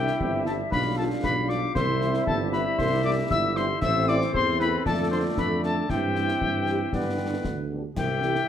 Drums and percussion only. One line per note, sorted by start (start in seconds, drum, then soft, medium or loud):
0.07 snare soft
0.20 concert bass drum medium
0.46 snare soft
0.72 concert bass drum medium
0.72 snare medium
1.24 concert bass drum medium
1.24 snare medium
1.50 snare soft
1.76 concert bass drum medium
1.76 snare medium
2.01 snare soft
2.14 snare medium
2.27 concert bass drum medium
2.53 snare soft
2.79 concert bass drum medium
2.79 snare medium
3.31 concert bass drum medium
3.31 snare medium
3.56 snare soft
3.82 concert bass drum medium
3.82 snare medium
3.82 crash soft
4.08 snare soft
4.21 snare medium
4.34 concert bass drum medium
4.60 snare soft
4.86 concert bass drum medium
4.86 snare medium
5.37 concert bass drum medium
5.37 snare medium
5.63 snare soft
5.90 concert bass drum medium
5.90 snare medium
6.16 snare soft
6.29 snare medium
6.41 concert bass drum medium
6.67 snare soft
6.93 concert bass drum medium
6.93 snare medium
7.44 concert bass drum medium
7.44 snare medium
7.96 concert bass drum medium
7.96 snare medium
7.96 crash soft
8.22 snare soft
8.35 snare soft